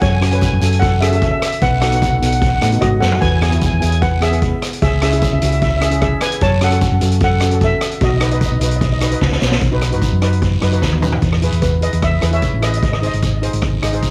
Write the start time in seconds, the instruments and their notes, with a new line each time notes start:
0.01 fingered electric bass F#2, steel pan C#5 G#5, kick, closed hi-hat, long guiro
0.09 steel pan G#5
0.16 steel pan G#5
0.21 steel pan C#4 F#4 A4 G#5, cross-stick, closed hi-hat
0.31 steel pan C#4 F#4 B4 G#5, closed hi-hat
0.38 steel pan G#5, kick, short guiro
0.42 steel pan G#5, closed hi-hat
0.53 fingered electric bass F#2, steel pan G#5
0.61 fingered electric bass F#2, steel pan C#4 F#4 A4 G#5, closed hi-hat, short guiro
0.69 steel pan G#5, closed hi-hat
0.79 steel pan A4 F#5, kick, closed hi-hat, long guiro
1.00 steel pan C#4 F#4 G#4 A4 E5, cross-stick, closed hi-hat, short guiro
1.08 steel pan C#4 F#4 E5
1.12 steel pan A4 E5, closed hi-hat
1.22 steel pan E5, kick, closed hi-hat
1.31 steel pan E5
1.39 steel pan E5, cross-stick, closed hi-hat, short guiro
1.46 steel pan E5
1.52 closed hi-hat
1.61 fingered electric bass B1, steel pan B4 F#5, kick, closed hi-hat, long guiro
1.81 steel pan B3 D#4 F#4 A4 F#5, cross-stick, closed hi-hat
1.88 steel pan B3 F#5, closed hi-hat
1.93 steel pan D#4 F#4 F#5
2.02 steel pan F#5, kick, closed hi-hat, short guiro
2.10 fingered electric bass B1, steel pan F#5
2.18 steel pan B3 D#4 F#5
2.22 fingered electric bass B1, steel pan A4 F#5, closed hi-hat, short guiro
2.32 steel pan F#5, closed hi-hat
2.40 steel pan F#5, kick, closed hi-hat, long guiro
2.48 steel pan F#5
2.56 steel pan F#5
2.61 fingered electric bass A2, steel pan B3 D#4 A4 F#5, cross-stick, closed hi-hat, short guiro
2.71 steel pan B3 D#4 F#4, closed hi-hat
2.81 fingered electric bass G#2, steel pan F#4 D#5, kick, cross-stick, closed hi-hat
3.00 fingered electric bass F#2, steel pan A4 F#5, snare, short guiro
3.12 floor tom
3.21 fingered electric bass E2, steel pan B4 G#5, kick, closed hi-hat, long guiro
3.29 steel pan G#5
3.36 steel pan G#5
3.41 steel pan B3 E4 G#4 G#5, cross-stick, closed hi-hat
3.50 steel pan B3 E4 F#4 G#5, closed hi-hat
3.58 steel pan G#5, kick, closed hi-hat
3.62 steel pan G#5, short guiro
3.73 fingered electric bass E2, steel pan G#5
3.80 fingered electric bass E2, steel pan B3 E4 G#4 G#5, closed hi-hat, short guiro
3.89 steel pan G#5, closed hi-hat
4.02 steel pan B4 F#5, kick, closed hi-hat, long guiro
4.20 steel pan B3 E4 G#4 E5, cross-stick, closed hi-hat, short guiro
4.31 steel pan B3 E4 G#4, closed hi-hat
4.42 kick, closed hi-hat
4.62 cross-stick, closed hi-hat, short guiro
4.73 closed hi-hat
4.82 fingered electric bass C#2, steel pan G#4 E5, kick, closed hi-hat, long guiro
5.02 steel pan C#4 E4 G#4 E5, cross-stick, closed hi-hat
5.11 steel pan C#4 E4 G#4 E5, closed hi-hat
5.19 steel pan E5, kick, closed hi-hat
5.23 steel pan E5, short guiro
5.33 fingered electric bass C#2, steel pan E5
5.39 fingered electric bass C#2, steel pan C#4 E4 E5, closed hi-hat, short guiro
5.43 steel pan F#4 E5
5.52 steel pan E5, closed hi-hat
5.62 steel pan E5, kick, closed hi-hat, long guiro
5.69 steel pan E5
5.77 steel pan C#4 E5
5.81 steel pan E4 G#4 E5, cross-stick, closed hi-hat, short guiro
5.90 steel pan C#4 E4 G#4, closed hi-hat
6.02 steel pan G#4 E5, kick, cross-stick, closed hi-hat
6.21 steel pan B4 G#5, cross-stick, closed hi-hat, short guiro
6.32 closed hi-hat
6.41 fingered electric bass F#2, steel pan C#5 A5, kick, closed hi-hat, long guiro
6.61 steel pan C#4 F#4 A4 F#5, cross-stick, closed hi-hat
6.70 steel pan C#4 F#4 A4, closed hi-hat
6.81 kick, closed hi-hat, short guiro
6.92 fingered electric bass F#2
7.00 fingered electric bass F#2, steel pan C#4 F#4 A4, closed hi-hat, short guiro
7.11 closed hi-hat
7.20 steel pan A4 F#5, kick, closed hi-hat, long guiro
7.40 steel pan C#4 F#4 A4, cross-stick, closed hi-hat, short guiro
7.51 steel pan C#4 F#4 A4, closed hi-hat
7.61 steel pan A4 E5, kick, closed hi-hat
7.81 cross-stick, closed hi-hat, short guiro
7.91 closed hi-hat
8.01 fingered electric bass B1, steel pan F#4 D#5, kick, closed hi-hat, long guiro
8.09 steel pan D#5
8.17 steel pan D#4 D#5, cross-stick, closed hi-hat
8.21 steel pan F#4 B4 D#5
8.31 steel pan D#4 F#4 B4 D#5, closed hi-hat
8.39 steel pan D#5, kick, closed hi-hat, short guiro
8.46 steel pan D#5
8.52 fingered electric bass B1, steel pan D#5
8.60 fingered electric bass B1, steel pan D#4 F#4 B4 D#5, closed hi-hat, short guiro
8.68 steel pan D#5, closed hi-hat
8.76 steel pan D#5
8.81 steel pan D#5, kick, closed hi-hat, long guiro
8.92 steel pan D#5
8.99 steel pan D#4 F#4 B4 D#5, cross-stick, closed hi-hat, short guiro
9.06 steel pan D#5
9.10 steel pan D#4 F#4 B4, closed hi-hat
9.21 fingered electric bass C#2, kick, snare
9.32 snare
9.42 fingered electric bass B1, snare, short guiro
9.52 snare
9.61 fingered electric bass B1, kick, closed hi-hat, long guiro
9.72 steel pan D#4 F#4 B4
9.82 cross-stick, closed hi-hat, short guiro
9.91 fingered electric bass G#1, steel pan D#4 F#4 B4, closed hi-hat
10.02 kick, closed hi-hat, short guiro
10.13 fingered electric bass F#2
10.22 steel pan D#4 F#4 B4, cross-stick, closed hi-hat
10.33 closed hi-hat
10.42 kick, closed hi-hat, long guiro
10.61 fingered electric bass F#2, steel pan D#4 F#4 B4, cross-stick, closed hi-hat
10.72 steel pan D#4 F#4 B4, closed hi-hat
10.82 fingered electric bass D#2, kick, snare, short guiro
10.93 high tom
11.01 steel pan D#4 F#4 B4, mid tom, short guiro
11.12 floor tom
11.22 fingered electric bass E2, kick, closed hi-hat, long guiro
11.32 cross-stick
11.42 steel pan E4 G#4 B4, closed hi-hat
11.52 fingered electric bass E2, closed hi-hat
11.62 steel pan B4, kick, closed hi-hat, short guiro
11.81 steel pan E4 G#4 B4 D#5, closed hi-hat
11.93 fingered electric bass E2, closed hi-hat
12.02 steel pan E5, kick, cross-stick, closed hi-hat, long guiro
12.21 fingered electric bass E2, steel pan E4 G#4 B4, cross-stick, closed hi-hat, short guiro
12.31 steel pan E4 G#4 C#5 E5, closed hi-hat
12.42 kick, closed hi-hat, short guiro
12.54 fingered electric bass A1
12.61 steel pan E4 G#4 B4 D#5, cross-stick, closed hi-hat, short guiro
12.71 steel pan D#5, closed hi-hat
12.77 steel pan D#5
12.82 fingered electric bass G#1, steel pan D#5, kick, closed hi-hat, long guiro
12.92 steel pan D#5, cross-stick
12.99 steel pan D#4 G#4 C5 D#5, closed hi-hat
13.07 steel pan D#5
13.13 fingered electric bass G#1, closed hi-hat
13.22 kick, closed hi-hat, short guiro
13.42 steel pan D#4 G#4 C5, closed hi-hat
13.53 fingered electric bass G#1, closed hi-hat
13.62 kick, cross-stick, closed hi-hat, long guiro
13.82 fingered electric bass G#1, steel pan D#4 G#4 D#5, cross-stick, closed hi-hat, short guiro
13.93 steel pan D#4 G#4 C5, closed hi-hat
14.02 kick, closed hi-hat, short guiro